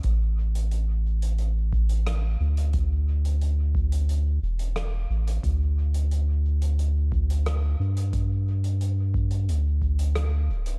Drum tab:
HH |x--xx--xx--xx--x|x--xx--xx--xx--x|x--xx--xx--xx--x|x--xx--xx--xx--x|
SD |------------r---|------------r---|------------r---|------------r---|
BD |o---------o-----|o-----o---------|o---------o-----|o-----o---o-----|